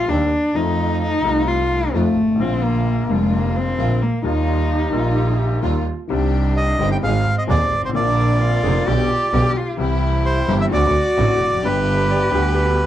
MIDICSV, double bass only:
0, 0, Header, 1, 2, 480
1, 0, Start_track
1, 0, Key_signature, -3, "major"
1, 0, Tempo, 461894
1, 575, Time_signature, 4, 2, 24, 8
1, 6343, Key_signature, -3, "minor"
1, 13368, End_track
2, 0, Start_track
2, 0, Title_t, "Double bass"
2, 0, Program_c, 0, 43
2, 89, Note_on_c, 0, 39, 90
2, 294, Note_off_c, 0, 39, 0
2, 574, Note_on_c, 0, 41, 85
2, 1259, Note_off_c, 0, 41, 0
2, 1296, Note_on_c, 0, 36, 79
2, 1980, Note_off_c, 0, 36, 0
2, 2015, Note_on_c, 0, 41, 88
2, 2217, Note_off_c, 0, 41, 0
2, 2254, Note_on_c, 0, 32, 60
2, 2490, Note_off_c, 0, 32, 0
2, 2496, Note_on_c, 0, 34, 86
2, 3179, Note_off_c, 0, 34, 0
2, 3216, Note_on_c, 0, 29, 89
2, 3898, Note_off_c, 0, 29, 0
2, 3940, Note_on_c, 0, 34, 100
2, 4138, Note_off_c, 0, 34, 0
2, 4414, Note_on_c, 0, 39, 93
2, 5096, Note_off_c, 0, 39, 0
2, 5137, Note_on_c, 0, 34, 95
2, 5824, Note_off_c, 0, 34, 0
2, 5856, Note_on_c, 0, 39, 94
2, 6061, Note_off_c, 0, 39, 0
2, 6348, Note_on_c, 0, 36, 96
2, 7033, Note_off_c, 0, 36, 0
2, 7067, Note_on_c, 0, 31, 88
2, 7269, Note_off_c, 0, 31, 0
2, 7308, Note_on_c, 0, 32, 104
2, 7510, Note_off_c, 0, 32, 0
2, 7789, Note_on_c, 0, 39, 98
2, 7990, Note_off_c, 0, 39, 0
2, 8031, Note_on_c, 0, 32, 71
2, 8260, Note_off_c, 0, 32, 0
2, 8266, Note_on_c, 0, 34, 105
2, 8946, Note_off_c, 0, 34, 0
2, 8982, Note_on_c, 0, 29, 99
2, 9182, Note_off_c, 0, 29, 0
2, 9219, Note_on_c, 0, 35, 97
2, 9421, Note_off_c, 0, 35, 0
2, 9700, Note_on_c, 0, 35, 108
2, 9898, Note_off_c, 0, 35, 0
2, 10177, Note_on_c, 0, 36, 95
2, 10857, Note_off_c, 0, 36, 0
2, 10897, Note_on_c, 0, 31, 97
2, 11095, Note_off_c, 0, 31, 0
2, 11141, Note_on_c, 0, 38, 99
2, 11337, Note_off_c, 0, 38, 0
2, 11619, Note_on_c, 0, 33, 101
2, 11815, Note_off_c, 0, 33, 0
2, 11861, Note_on_c, 0, 29, 71
2, 12089, Note_off_c, 0, 29, 0
2, 12096, Note_on_c, 0, 31, 104
2, 12777, Note_off_c, 0, 31, 0
2, 12816, Note_on_c, 0, 38, 88
2, 13368, Note_off_c, 0, 38, 0
2, 13368, End_track
0, 0, End_of_file